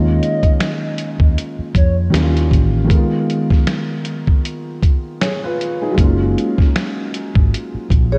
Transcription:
Already playing: D#2 D#3 G#3 A#3 C#4 F4 D#5
0.23 closed hi-hat
0.43 kick, closed hi-hat
0.60 finger snap, snare, closed hi-hat
0.98 closed hi-hat
1.20 D#2, kick
1.38 closed hi-hat
1.59 muted fingered electric bass stroke
1.75 F2 C#5, kick, closed hi-hat
2.10 D#2 D#3 G3 A#3, snare
2.14 C#4 E4, finger snap, closed hi-hat
2.23 F4
2.37 closed hi-hat
2.51 A1, kick, closed hi-hat
2.84 D#3 G#3
2.90 B3 A#4, kick, closed hi-hat
2.96 F4
3.30 closed hi-hat
3.50 kick, snare
3.67 finger snap, snare, closed hi-hat
4.05 closed hi-hat
4.27 kick
4.45 closed hi-hat
4.82 kick, closed hi-hat
5.21 G#4 C#5, finger snap, snare, closed hi-hat
5.43 F4 B4
5.61 closed hi-hat
5.82 D#4 G#4
5.91 F#3 G#3
5.97 F#1 A#3 C#4, kick, closed hi-hat
6.03 F4
6.38 closed hi-hat
6.58 kick, snare
6.76 finger snap, snare, closed hi-hat
7.14 closed hi-hat
7.35 G#1, kick
7.54 closed hi-hat
7.75 muted fingered electric bass stroke
7.90 A#1, kick, closed hi-hat
8.12 G#4 C#5

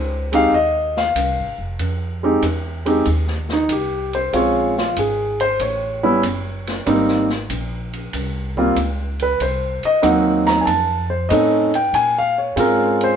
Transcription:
Already playing: C#2 C5
0.32 G#3 C4 D#4 G4 F5, ride
0.52 D#2 D#5
0.97 F5, snare
1.16 C2, hi-hat pedal, ride
1.37 G#1
1.58 F1
1.79 F2, ride
2.23 G#3 C4 D#4 G4
2.42 E2, hi-hat pedal, ride
2.86 G#3 C4 D#4 G4, ride
3.05 D#2, ride
3.27 snare
3.49 D#4, snare
3.69 C2 G4, hi-hat pedal, ride
4.13 C5, ride
4.33 A#1 G#3 C4 C#4 F4 C#5, ride
4.78 F4, snare
4.97 G#1 G#4, hi-hat pedal, ride
5.40 C5, ride
5.59 A1 C#5, ride
6.03 G3 B3 C#4 E4
6.23 F#1, hi-hat pedal, ride
6.67 snare, ride
6.86 G#1 G3 A#3 C4 D#4, ride
7.08 snare
7.30 snare
7.50 A#1, hi-hat pedal, ride
7.93 ride
8.13 C2, ride
8.57 G3 A#3 C4 F4, kick
8.76 C#2, hi-hat pedal, ride
9.19 B4, ride
9.40 C2 C5, ride
9.83 D#5, muted upright bass stroke, ride
10.02 D#2 F#3 A#3 C4 D#4 F#5, hi-hat pedal, ride
10.47 A#5, snare, ride
10.61 G#5
10.65 F2 A5, ride
11.10 C5
11.29 A2 A3 C4 C#4 D#4 D#5, hi-hat pedal, ride
11.74 G5, ride
11.93 A#2 G#5, ride
12.18 F5
12.38 C#5
12.56 G#2 G#3 C4 C#4 F4 A#4, hi-hat pedal, ride
13.01 C5, ride

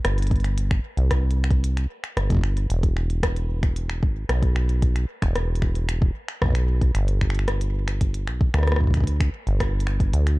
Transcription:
0.04 G1, finger snap, cross-stick, closed hi-hat
0.18 closed hi-hat
0.22 closed hi-hat
0.27 closed hi-hat
0.31 kick, closed hi-hat
0.36 closed hi-hat
0.40 closed hi-hat
0.44 finger snap, closed hi-hat
0.58 closed hi-hat
0.71 finger snap, kick
0.97 C2, closed hi-hat
1.11 finger snap, kick, cross-stick, closed hi-hat
1.31 closed hi-hat
1.44 finger snap
1.51 kick, closed hi-hat
1.64 closed hi-hat
1.77 finger snap, closed hi-hat
2.04 finger snap, closed hi-hat
2.17 G1, cross-stick, closed hi-hat
2.30 kick, closed hi-hat
2.32 kick
2.35 kick
2.37 kick
2.39 kick
2.41 finger snap, kick
2.57 closed hi-hat
2.70 E1, closed hi-hat
2.83 kick, closed hi-hat
2.97 finger snap
3.10 closed hi-hat
3.23 finger snap, kick, cross-stick, closed hi-hat
3.36 closed hi-hat
3.63 finger snap, kick, closed hi-hat
3.76 closed hi-hat
3.90 finger snap
4.03 G#1, kick
4.29 B1, finger snap, cross-stick, closed hi-hat
4.42 kick, closed hi-hat
4.56 finger snap
4.69 closed hi-hat
4.82 kick, closed hi-hat
4.96 finger snap, closed hi-hat
5.22 E1, finger snap, kick, closed hi-hat
5.36 cross-stick, closed hi-hat
5.55 closed hi-hat
5.62 finger snap, kick
5.75 closed hi-hat
5.89 finger snap, closed hi-hat
6.02 kick
6.28 finger snap
6.42 B1, kick, cross-stick
6.44 kick
6.46 kick
6.48 kick
6.50 kick
6.53 finger snap, kick, closed hi-hat
6.81 kick, closed hi-hat
6.95 G1, finger snap, closed hi-hat
7.08 closed hi-hat
7.21 finger snap, kick
7.30 finger snap
7.35 closed hi-hat
7.39 finger snap
7.48 cross-stick, closed hi-hat
7.61 closed hi-hat
7.88 finger snap, closed hi-hat
8.01 kick, closed hi-hat
8.14 closed hi-hat
8.28 B1, finger snap
8.41 kick
8.54 D2, finger snap, cross-stick
8.59 cross-stick
8.63 cross-stick
8.67 cross-stick, closed hi-hat
8.72 cross-stick
8.76 cross-stick
8.81 kick
8.84 kick
8.87 kick
8.91 kick
8.94 finger snap, kick, closed hi-hat
8.97 kick
9.00 kick
9.04 kick, closed hi-hat
9.20 finger snap, kick, closed hi-hat
9.47 G1, closed hi-hat
9.60 finger snap, kick, cross-stick, closed hi-hat
9.80 closed hi-hat
9.87 finger snap
10.00 kick, closed hi-hat
10.13 D2, closed hi-hat
10.27 finger snap, closed hi-hat

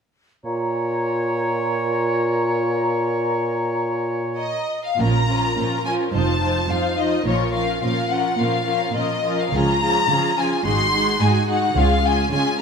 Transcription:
0.45 A#2 F4 C#5 A#5
4.37 D#5
4.85 F5
4.99 A#1 A#2 F3 C#4 F4 A#4 A#5
5.28 F3 C#4 F4 A#4
5.57 A#2 F3 C#4 F4 A#4
5.85 F3 C#4 F4 A#4 G#5
6.13 F1 F2 F3 D#4 F4 C5 A5
6.41 F3 D#4 F4 C5
6.69 F2 F3 D#4 F4 C5 F5
6.97 F3 D#4 F4 C5 D#5
7.25 A#1 A#2 F3 C#4 F4 A#4 C#5
7.53 F3 C#4 F4 A#4 F5
7.82 A#2 F3 C#4 F4 A#4 F5
8.10 F3 C#4 F4 A#4 F#5
8.38 A#2 F3 C#4 F4 A#4 F5
8.66 F3 C#4 F4 A#4
8.94 A#2 F3 C#4 F4 A#4 D#5
9.24 F3 C#4 F4 A#4
9.40 F5
9.53 C#2 C#3 F3 C#4 F4 G#4 A#5
9.82 F3 C#4 F4 G#4
10.10 C#3 F3 C#4 F4 G#4
10.37 F3 C#4 F4 G#4 G#5
10.65 G#1 G#2 G#3 D#4 F#4 G#4 C6
10.93 G#3 D#4 F#4 G#4
11.21 G#2 G#3 D#4 F#4 G#4 G#5
11.48 G#3 D#4 F#4 G#4 F#5
11.76 C#2 C#3 G#3 C#4 F4 G#4 F5
12.04 G#3 C#4 F4 G#4 G#5
12.31 C#3 G#3 C#4 F4 G#4 G#5

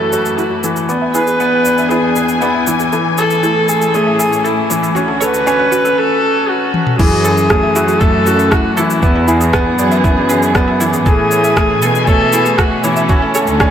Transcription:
Already playing: F#2 E3 F#3 A3 E4 F#4 A4
0.13 F#4 C#5, shaker
0.25 E5, shaker
0.38 E4 F#4, shaker
0.51 F#4
0.64 E3 A4, shaker
0.76 shaker
0.88 E2 E3 B3 D4 D5 G#5, shaker
1.02 E5
1.13 E4 G#4 B4, shaker
1.27 G#4, shaker
1.40 B3 B4, shaker
1.65 D5, shaker
1.78 E5, shaker
1.89 B3 E4 G#4, shaker
2.04 G#4
2.16 G#4 B4, shaker
2.29 shaker
2.40 B3 E4 D5, shaker
2.55 E5
2.67 E3 E4, shaker
2.80 G#4, shaker
2.92 A2 E3 C#4 A4, shaker
3.18 A4 C#5, shaker
3.30 E5, shaker
3.43 A3 E4, shaker
3.56 G#4
3.68 G#4 A4, shaker
3.82 shaker
3.94 A3 G#4 C#5, shaker
4.07 E5
4.19 E4 G#4, shaker
4.32 G#4, shaker
4.44 E4 A4, shaker
4.70 E3 C#5, shaker
4.83 E5, shaker
4.95 D2 D3 C#4 F#4, shaker
5.08 A4
5.20 A4 B4 C#5, shaker
5.34 shaker
5.46 C#4 D5, shaker
5.59 F#5
5.72 F#4, shaker
5.85 A4, shaker
5.98 A4
6.49 F#4
6.74 high tom
6.87 mid tom
6.99 F#2 E3 F#3 A3 C#4 E4 G#4, kick, crash, shaker
7.12 F#4
7.25 A4, shaker
7.38 shaker
7.50 A3 C#5, kick, cross-stick, shaker
7.63 E5
7.76 E4 F#4, shaker
7.88 F#4, shaker
8.00 F#2 A3 A4, kick, shaker
8.26 F#4 C#5, shaker
8.39 E5, shaker
8.51 E4 F#4, kick, cross-stick, shaker
8.64 F#4
8.77 E3 E4 A4, shaker
8.90 shaker
9.03 E2 E3 B3 D4 G#4 D5, kick, shaker
9.15 E5
9.28 E4 G#4, shaker
9.41 G#4, shaker
9.53 B3 B4, kick, cross-stick, shaker
9.79 F#2 D5, shaker
9.92 E5, shaker
10.04 B3 E4, kick, shaker
10.17 G#4
10.29 G#4 B4, shaker
10.43 shaker
10.55 B3 D5, kick, cross-stick, shaker
10.68 E5
10.80 E3 E4, shaker
10.93 G#4, shaker
11.06 A2 E3 A3 C#4 G#4 A4 G#5, kick, shaker
11.31 C#5, shaker
11.44 E5, shaker
11.57 A3 E4, kick, cross-stick, shaker
11.70 G#4
11.82 B2 G#4 A4, shaker
11.95 shaker
12.07 A3 A4 C#5, kick, shaker
12.20 E5
12.33 E4 G#4, shaker
12.46 G#4, shaker
12.58 F#4 A4, kick, cross-stick, shaker
12.83 E3 E4 C#5, shaker
12.96 E5, shaker
13.08 D3 C#4 F#4, kick, shaker
13.22 A4
13.35 A4 C#5, shaker
13.47 D2, shaker
13.60 C#4 D5, kick, cross-stick, shaker

